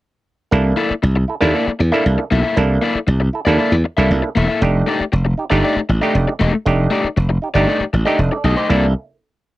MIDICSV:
0, 0, Header, 1, 6, 480
1, 0, Start_track
1, 0, Tempo, 510638
1, 487, Time_signature, 4, 2, 24, 8
1, 9001, End_track
2, 0, Start_track
2, 0, Title_t, "Overdriven electric guitar"
2, 0, Program_c, 0, 29
2, 719, Note_on_c, 0, 58, 71
2, 725, Note_on_c, 0, 64, 76
2, 730, Note_on_c, 0, 69, 83
2, 734, Note_on_c, 0, 74, 79
2, 862, Note_off_c, 0, 58, 0
2, 865, Note_off_c, 0, 64, 0
2, 868, Note_off_c, 0, 69, 0
2, 869, Note_off_c, 0, 74, 0
2, 1325, Note_on_c, 0, 74, 90
2, 1333, Note_on_c, 0, 69, 84
2, 1339, Note_on_c, 0, 64, 75
2, 1344, Note_on_c, 0, 58, 70
2, 1438, Note_off_c, 0, 58, 0
2, 1441, Note_off_c, 0, 64, 0
2, 1449, Note_off_c, 0, 69, 0
2, 1449, Note_on_c, 0, 58, 82
2, 1452, Note_on_c, 0, 64, 82
2, 1453, Note_off_c, 0, 74, 0
2, 1460, Note_on_c, 0, 69, 78
2, 1464, Note_on_c, 0, 74, 99
2, 1588, Note_off_c, 0, 58, 0
2, 1590, Note_off_c, 0, 64, 0
2, 1594, Note_off_c, 0, 69, 0
2, 1596, Note_off_c, 0, 74, 0
2, 1807, Note_on_c, 0, 76, 67
2, 1813, Note_on_c, 0, 69, 63
2, 1820, Note_on_c, 0, 64, 67
2, 1825, Note_on_c, 0, 58, 56
2, 1914, Note_off_c, 0, 58, 0
2, 1918, Note_off_c, 0, 64, 0
2, 1918, Note_off_c, 0, 76, 0
2, 1921, Note_off_c, 0, 69, 0
2, 2169, Note_on_c, 0, 58, 61
2, 2177, Note_on_c, 0, 64, 59
2, 2182, Note_on_c, 0, 69, 58
2, 2186, Note_on_c, 0, 76, 64
2, 2275, Note_off_c, 0, 76, 0
2, 2280, Note_off_c, 0, 58, 0
2, 2282, Note_off_c, 0, 69, 0
2, 2284, Note_off_c, 0, 64, 0
2, 2286, Note_on_c, 0, 76, 68
2, 2293, Note_on_c, 0, 69, 58
2, 2299, Note_on_c, 0, 64, 55
2, 2303, Note_on_c, 0, 58, 48
2, 2399, Note_off_c, 0, 76, 0
2, 2403, Note_off_c, 0, 69, 0
2, 2406, Note_off_c, 0, 64, 0
2, 2407, Note_off_c, 0, 58, 0
2, 2649, Note_on_c, 0, 58, 77
2, 2655, Note_on_c, 0, 64, 86
2, 2659, Note_on_c, 0, 69, 75
2, 2665, Note_on_c, 0, 74, 90
2, 2792, Note_off_c, 0, 58, 0
2, 2795, Note_off_c, 0, 64, 0
2, 2797, Note_off_c, 0, 69, 0
2, 2799, Note_off_c, 0, 74, 0
2, 3246, Note_on_c, 0, 74, 76
2, 3256, Note_on_c, 0, 69, 78
2, 3260, Note_on_c, 0, 64, 73
2, 3267, Note_on_c, 0, 58, 67
2, 3353, Note_off_c, 0, 58, 0
2, 3358, Note_off_c, 0, 64, 0
2, 3364, Note_off_c, 0, 69, 0
2, 3364, Note_on_c, 0, 58, 91
2, 3369, Note_on_c, 0, 64, 92
2, 3371, Note_off_c, 0, 74, 0
2, 3375, Note_on_c, 0, 69, 93
2, 3383, Note_on_c, 0, 74, 104
2, 3511, Note_off_c, 0, 58, 0
2, 3513, Note_off_c, 0, 64, 0
2, 3516, Note_off_c, 0, 69, 0
2, 3520, Note_off_c, 0, 74, 0
2, 3731, Note_on_c, 0, 76, 69
2, 3736, Note_on_c, 0, 69, 64
2, 3744, Note_on_c, 0, 64, 55
2, 3750, Note_on_c, 0, 58, 62
2, 3842, Note_off_c, 0, 58, 0
2, 3845, Note_off_c, 0, 76, 0
2, 3847, Note_off_c, 0, 69, 0
2, 3848, Note_off_c, 0, 64, 0
2, 4092, Note_on_c, 0, 58, 62
2, 4101, Note_on_c, 0, 64, 65
2, 4105, Note_on_c, 0, 69, 70
2, 4110, Note_on_c, 0, 76, 72
2, 4204, Note_off_c, 0, 76, 0
2, 4206, Note_off_c, 0, 58, 0
2, 4208, Note_off_c, 0, 69, 0
2, 4210, Note_off_c, 0, 64, 0
2, 4215, Note_on_c, 0, 76, 64
2, 4219, Note_on_c, 0, 69, 65
2, 4225, Note_on_c, 0, 64, 63
2, 4231, Note_on_c, 0, 58, 59
2, 4327, Note_off_c, 0, 76, 0
2, 4329, Note_off_c, 0, 69, 0
2, 4332, Note_off_c, 0, 64, 0
2, 4335, Note_off_c, 0, 58, 0
2, 4575, Note_on_c, 0, 57, 78
2, 4583, Note_on_c, 0, 63, 91
2, 4592, Note_on_c, 0, 67, 82
2, 4596, Note_on_c, 0, 74, 92
2, 4717, Note_off_c, 0, 57, 0
2, 4721, Note_off_c, 0, 63, 0
2, 4726, Note_off_c, 0, 67, 0
2, 4728, Note_off_c, 0, 74, 0
2, 5171, Note_on_c, 0, 74, 92
2, 5178, Note_on_c, 0, 67, 76
2, 5184, Note_on_c, 0, 63, 76
2, 5189, Note_on_c, 0, 57, 69
2, 5280, Note_off_c, 0, 57, 0
2, 5286, Note_off_c, 0, 63, 0
2, 5291, Note_off_c, 0, 67, 0
2, 5292, Note_on_c, 0, 57, 94
2, 5296, Note_off_c, 0, 74, 0
2, 5297, Note_on_c, 0, 63, 92
2, 5302, Note_on_c, 0, 67, 94
2, 5307, Note_on_c, 0, 74, 102
2, 5435, Note_off_c, 0, 57, 0
2, 5438, Note_off_c, 0, 63, 0
2, 5441, Note_off_c, 0, 67, 0
2, 5443, Note_off_c, 0, 74, 0
2, 5656, Note_on_c, 0, 75, 62
2, 5662, Note_on_c, 0, 67, 66
2, 5670, Note_on_c, 0, 63, 69
2, 5674, Note_on_c, 0, 57, 57
2, 5767, Note_off_c, 0, 75, 0
2, 5770, Note_off_c, 0, 67, 0
2, 5772, Note_off_c, 0, 57, 0
2, 5775, Note_off_c, 0, 63, 0
2, 6010, Note_on_c, 0, 57, 82
2, 6019, Note_on_c, 0, 63, 81
2, 6025, Note_on_c, 0, 67, 82
2, 6029, Note_on_c, 0, 75, 89
2, 6137, Note_off_c, 0, 67, 0
2, 6140, Note_off_c, 0, 75, 0
2, 6146, Note_off_c, 0, 63, 0
2, 6154, Note_off_c, 0, 57, 0
2, 6491, Note_on_c, 0, 57, 74
2, 6499, Note_on_c, 0, 63, 86
2, 6506, Note_on_c, 0, 67, 83
2, 6510, Note_on_c, 0, 74, 83
2, 6633, Note_off_c, 0, 57, 0
2, 6637, Note_off_c, 0, 63, 0
2, 6641, Note_off_c, 0, 67, 0
2, 6643, Note_off_c, 0, 74, 0
2, 7089, Note_on_c, 0, 74, 81
2, 7098, Note_on_c, 0, 67, 78
2, 7104, Note_on_c, 0, 63, 70
2, 7107, Note_on_c, 0, 57, 68
2, 7203, Note_off_c, 0, 57, 0
2, 7212, Note_off_c, 0, 63, 0
2, 7214, Note_on_c, 0, 57, 90
2, 7215, Note_off_c, 0, 67, 0
2, 7220, Note_off_c, 0, 74, 0
2, 7224, Note_on_c, 0, 63, 91
2, 7227, Note_on_c, 0, 67, 102
2, 7232, Note_on_c, 0, 74, 90
2, 7353, Note_off_c, 0, 57, 0
2, 7358, Note_off_c, 0, 63, 0
2, 7359, Note_off_c, 0, 67, 0
2, 7362, Note_off_c, 0, 74, 0
2, 7573, Note_on_c, 0, 75, 64
2, 7581, Note_on_c, 0, 67, 59
2, 7588, Note_on_c, 0, 63, 65
2, 7593, Note_on_c, 0, 57, 60
2, 7681, Note_off_c, 0, 75, 0
2, 7685, Note_off_c, 0, 67, 0
2, 7689, Note_off_c, 0, 57, 0
2, 7689, Note_off_c, 0, 63, 0
2, 7937, Note_on_c, 0, 57, 55
2, 7941, Note_on_c, 0, 63, 60
2, 7947, Note_on_c, 0, 67, 60
2, 7952, Note_on_c, 0, 75, 69
2, 8035, Note_off_c, 0, 75, 0
2, 8042, Note_off_c, 0, 57, 0
2, 8042, Note_off_c, 0, 67, 0
2, 8044, Note_off_c, 0, 63, 0
2, 8046, Note_on_c, 0, 75, 65
2, 8054, Note_on_c, 0, 67, 59
2, 8061, Note_on_c, 0, 63, 59
2, 8063, Note_on_c, 0, 57, 49
2, 8157, Note_off_c, 0, 75, 0
2, 8160, Note_off_c, 0, 67, 0
2, 8164, Note_off_c, 0, 63, 0
2, 8165, Note_off_c, 0, 57, 0
2, 8172, Note_on_c, 0, 58, 80
2, 8175, Note_on_c, 0, 64, 77
2, 8181, Note_on_c, 0, 69, 87
2, 8184, Note_on_c, 0, 74, 95
2, 8315, Note_off_c, 0, 58, 0
2, 8316, Note_off_c, 0, 64, 0
2, 8319, Note_off_c, 0, 69, 0
2, 8321, Note_off_c, 0, 74, 0
2, 9001, End_track
3, 0, Start_track
3, 0, Title_t, "Clav"
3, 0, Program_c, 1, 7
3, 482, Note_on_c, 1, 58, 79
3, 484, Note_on_c, 1, 62, 75
3, 491, Note_on_c, 1, 64, 77
3, 494, Note_on_c, 1, 69, 88
3, 837, Note_off_c, 1, 58, 0
3, 838, Note_off_c, 1, 62, 0
3, 841, Note_off_c, 1, 64, 0
3, 843, Note_off_c, 1, 69, 0
3, 1202, Note_on_c, 1, 64, 85
3, 1217, Note_on_c, 1, 69, 91
3, 1265, Note_off_c, 1, 64, 0
3, 1272, Note_off_c, 1, 69, 0
3, 1321, Note_on_c, 1, 58, 104
3, 1326, Note_on_c, 1, 62, 93
3, 1330, Note_on_c, 1, 64, 89
3, 1335, Note_on_c, 1, 69, 100
3, 1561, Note_off_c, 1, 58, 0
3, 1563, Note_off_c, 1, 62, 0
3, 1565, Note_off_c, 1, 64, 0
3, 1568, Note_off_c, 1, 69, 0
3, 1803, Note_on_c, 1, 58, 92
3, 1808, Note_on_c, 1, 62, 82
3, 1814, Note_on_c, 1, 64, 76
3, 1819, Note_on_c, 1, 69, 102
3, 2102, Note_off_c, 1, 58, 0
3, 2105, Note_off_c, 1, 62, 0
3, 2107, Note_off_c, 1, 64, 0
3, 2110, Note_off_c, 1, 69, 0
3, 2411, Note_on_c, 1, 58, 85
3, 2411, Note_on_c, 1, 62, 81
3, 2416, Note_on_c, 1, 64, 75
3, 2424, Note_on_c, 1, 69, 95
3, 2766, Note_off_c, 1, 58, 0
3, 2766, Note_off_c, 1, 62, 0
3, 2769, Note_off_c, 1, 64, 0
3, 2773, Note_off_c, 1, 69, 0
3, 3132, Note_on_c, 1, 64, 86
3, 3148, Note_on_c, 1, 69, 105
3, 3194, Note_off_c, 1, 64, 0
3, 3202, Note_off_c, 1, 69, 0
3, 3256, Note_on_c, 1, 58, 93
3, 3262, Note_on_c, 1, 62, 88
3, 3265, Note_on_c, 1, 64, 91
3, 3270, Note_on_c, 1, 69, 108
3, 3493, Note_off_c, 1, 58, 0
3, 3496, Note_off_c, 1, 62, 0
3, 3497, Note_off_c, 1, 64, 0
3, 3500, Note_off_c, 1, 69, 0
3, 3737, Note_on_c, 1, 58, 91
3, 3741, Note_on_c, 1, 62, 82
3, 3747, Note_on_c, 1, 64, 84
3, 3750, Note_on_c, 1, 69, 98
3, 4033, Note_off_c, 1, 58, 0
3, 4034, Note_off_c, 1, 62, 0
3, 4038, Note_off_c, 1, 64, 0
3, 4039, Note_off_c, 1, 69, 0
3, 4337, Note_on_c, 1, 57, 82
3, 4343, Note_on_c, 1, 62, 80
3, 4346, Note_on_c, 1, 63, 68
3, 4351, Note_on_c, 1, 67, 89
3, 4692, Note_off_c, 1, 57, 0
3, 4695, Note_off_c, 1, 62, 0
3, 4696, Note_off_c, 1, 63, 0
3, 4698, Note_off_c, 1, 67, 0
3, 5053, Note_on_c, 1, 63, 83
3, 5067, Note_on_c, 1, 67, 96
3, 5117, Note_off_c, 1, 63, 0
3, 5124, Note_off_c, 1, 67, 0
3, 5170, Note_on_c, 1, 57, 97
3, 5175, Note_on_c, 1, 62, 87
3, 5182, Note_on_c, 1, 63, 86
3, 5185, Note_on_c, 1, 67, 97
3, 5411, Note_off_c, 1, 57, 0
3, 5413, Note_off_c, 1, 62, 0
3, 5417, Note_off_c, 1, 63, 0
3, 5419, Note_off_c, 1, 67, 0
3, 5653, Note_on_c, 1, 57, 93
3, 5657, Note_on_c, 1, 62, 79
3, 5663, Note_on_c, 1, 63, 83
3, 5666, Note_on_c, 1, 67, 107
3, 5950, Note_off_c, 1, 57, 0
3, 5952, Note_off_c, 1, 62, 0
3, 5955, Note_off_c, 1, 63, 0
3, 5957, Note_off_c, 1, 67, 0
3, 6256, Note_on_c, 1, 57, 86
3, 6263, Note_on_c, 1, 62, 81
3, 6267, Note_on_c, 1, 63, 70
3, 6270, Note_on_c, 1, 67, 97
3, 6609, Note_off_c, 1, 57, 0
3, 6612, Note_off_c, 1, 62, 0
3, 6615, Note_off_c, 1, 63, 0
3, 6616, Note_off_c, 1, 67, 0
3, 6974, Note_on_c, 1, 63, 81
3, 6988, Note_on_c, 1, 67, 92
3, 7035, Note_off_c, 1, 63, 0
3, 7042, Note_off_c, 1, 67, 0
3, 7094, Note_on_c, 1, 57, 86
3, 7098, Note_on_c, 1, 62, 91
3, 7103, Note_on_c, 1, 63, 94
3, 7108, Note_on_c, 1, 67, 102
3, 7329, Note_off_c, 1, 57, 0
3, 7331, Note_off_c, 1, 62, 0
3, 7334, Note_off_c, 1, 63, 0
3, 7336, Note_off_c, 1, 67, 0
3, 7571, Note_on_c, 1, 57, 89
3, 7577, Note_on_c, 1, 62, 75
3, 7579, Note_on_c, 1, 63, 82
3, 7585, Note_on_c, 1, 67, 90
3, 7700, Note_off_c, 1, 67, 0
3, 7821, Note_on_c, 1, 74, 55
3, 7825, Note_on_c, 1, 69, 52
3, 7864, Note_off_c, 1, 57, 0
3, 7867, Note_off_c, 1, 62, 0
3, 7868, Note_off_c, 1, 63, 0
3, 7930, Note_off_c, 1, 69, 0
3, 7931, Note_off_c, 1, 74, 0
3, 7937, Note_on_c, 1, 75, 76
3, 7942, Note_on_c, 1, 69, 55
3, 8048, Note_off_c, 1, 75, 0
3, 8051, Note_off_c, 1, 69, 0
3, 8056, Note_on_c, 1, 72, 64
3, 8063, Note_on_c, 1, 67, 59
3, 8173, Note_on_c, 1, 58, 69
3, 8173, Note_on_c, 1, 69, 86
3, 8174, Note_on_c, 1, 62, 70
3, 8174, Note_on_c, 1, 64, 74
3, 8280, Note_off_c, 1, 72, 0
3, 8284, Note_off_c, 1, 67, 0
3, 8394, Note_off_c, 1, 58, 0
3, 8394, Note_off_c, 1, 62, 0
3, 8394, Note_off_c, 1, 64, 0
3, 8394, Note_off_c, 1, 69, 0
3, 9001, End_track
4, 0, Start_track
4, 0, Title_t, "Slap bass"
4, 0, Program_c, 2, 36
4, 490, Note_on_c, 2, 36, 98
4, 679, Note_off_c, 2, 36, 0
4, 972, Note_on_c, 2, 36, 94
4, 1160, Note_off_c, 2, 36, 0
4, 1335, Note_on_c, 2, 39, 75
4, 1428, Note_off_c, 2, 39, 0
4, 1693, Note_on_c, 2, 40, 88
4, 1788, Note_off_c, 2, 40, 0
4, 1935, Note_on_c, 2, 36, 91
4, 2029, Note_off_c, 2, 36, 0
4, 2178, Note_on_c, 2, 35, 83
4, 2272, Note_off_c, 2, 35, 0
4, 2416, Note_on_c, 2, 36, 110
4, 2606, Note_off_c, 2, 36, 0
4, 2892, Note_on_c, 2, 36, 106
4, 3084, Note_off_c, 2, 36, 0
4, 3257, Note_on_c, 2, 39, 77
4, 3353, Note_off_c, 2, 39, 0
4, 3495, Note_on_c, 2, 40, 82
4, 3592, Note_off_c, 2, 40, 0
4, 3739, Note_on_c, 2, 36, 83
4, 3835, Note_off_c, 2, 36, 0
4, 3860, Note_on_c, 2, 36, 82
4, 3955, Note_off_c, 2, 36, 0
4, 4104, Note_on_c, 2, 28, 92
4, 4198, Note_off_c, 2, 28, 0
4, 4340, Note_on_c, 2, 29, 114
4, 4530, Note_off_c, 2, 29, 0
4, 4823, Note_on_c, 2, 29, 95
4, 5012, Note_off_c, 2, 29, 0
4, 5182, Note_on_c, 2, 31, 78
4, 5277, Note_off_c, 2, 31, 0
4, 5539, Note_on_c, 2, 33, 80
4, 5635, Note_off_c, 2, 33, 0
4, 5779, Note_on_c, 2, 29, 94
4, 5875, Note_off_c, 2, 29, 0
4, 6022, Note_on_c, 2, 28, 90
4, 6117, Note_off_c, 2, 28, 0
4, 6261, Note_on_c, 2, 29, 106
4, 6450, Note_off_c, 2, 29, 0
4, 6741, Note_on_c, 2, 29, 92
4, 6929, Note_off_c, 2, 29, 0
4, 7094, Note_on_c, 2, 31, 86
4, 7190, Note_off_c, 2, 31, 0
4, 7458, Note_on_c, 2, 33, 77
4, 7551, Note_off_c, 2, 33, 0
4, 7696, Note_on_c, 2, 29, 80
4, 7789, Note_off_c, 2, 29, 0
4, 7934, Note_on_c, 2, 35, 81
4, 8027, Note_off_c, 2, 35, 0
4, 8178, Note_on_c, 2, 36, 108
4, 8396, Note_off_c, 2, 36, 0
4, 9001, End_track
5, 0, Start_track
5, 0, Title_t, "Muted overdriven electric guitar strokes"
5, 964, Note_on_c, 9, 29, 47
5, 1058, Note_off_c, 9, 29, 0
5, 1088, Note_on_c, 9, 29, 50
5, 1182, Note_off_c, 9, 29, 0
5, 1686, Note_on_c, 9, 29, 41
5, 1780, Note_off_c, 9, 29, 0
5, 1926, Note_on_c, 9, 29, 39
5, 2020, Note_off_c, 9, 29, 0
5, 2051, Note_on_c, 9, 29, 50
5, 2145, Note_off_c, 9, 29, 0
5, 2886, Note_on_c, 9, 29, 50
5, 2980, Note_off_c, 9, 29, 0
5, 3010, Note_on_c, 9, 29, 52
5, 3104, Note_off_c, 9, 29, 0
5, 3613, Note_on_c, 9, 29, 48
5, 3707, Note_off_c, 9, 29, 0
5, 3853, Note_on_c, 9, 29, 37
5, 3947, Note_off_c, 9, 29, 0
5, 3970, Note_on_c, 9, 29, 49
5, 4064, Note_off_c, 9, 29, 0
5, 4816, Note_on_c, 9, 29, 50
5, 4910, Note_off_c, 9, 29, 0
5, 4934, Note_on_c, 9, 29, 39
5, 5028, Note_off_c, 9, 29, 0
5, 5538, Note_on_c, 9, 29, 45
5, 5632, Note_off_c, 9, 29, 0
5, 5783, Note_on_c, 9, 29, 41
5, 5877, Note_off_c, 9, 29, 0
5, 5901, Note_on_c, 9, 29, 50
5, 5995, Note_off_c, 9, 29, 0
5, 6144, Note_on_c, 9, 29, 45
5, 6238, Note_off_c, 9, 29, 0
5, 6737, Note_on_c, 9, 29, 41
5, 6831, Note_off_c, 9, 29, 0
5, 6856, Note_on_c, 9, 29, 53
5, 6950, Note_off_c, 9, 29, 0
5, 7457, Note_on_c, 9, 29, 48
5, 7551, Note_off_c, 9, 29, 0
5, 7701, Note_on_c, 9, 29, 37
5, 7795, Note_off_c, 9, 29, 0
5, 7817, Note_on_c, 9, 29, 43
5, 7911, Note_off_c, 9, 29, 0
5, 9001, End_track
6, 0, Start_track
6, 0, Title_t, "Muted slap bass strokes"
6, 852, Note_on_c, 9, 29, 43
6, 946, Note_off_c, 9, 29, 0
6, 1575, Note_on_c, 9, 29, 48
6, 1669, Note_off_c, 9, 29, 0
6, 2775, Note_on_c, 9, 29, 39
6, 2869, Note_off_c, 9, 29, 0
6, 4704, Note_on_c, 9, 29, 41
6, 4798, Note_off_c, 9, 29, 0
6, 5419, Note_on_c, 9, 29, 49
6, 5513, Note_off_c, 9, 29, 0
6, 6619, Note_on_c, 9, 29, 41
6, 6713, Note_off_c, 9, 29, 0
6, 7336, Note_on_c, 9, 29, 43
6, 7430, Note_off_c, 9, 29, 0
6, 9001, End_track
0, 0, End_of_file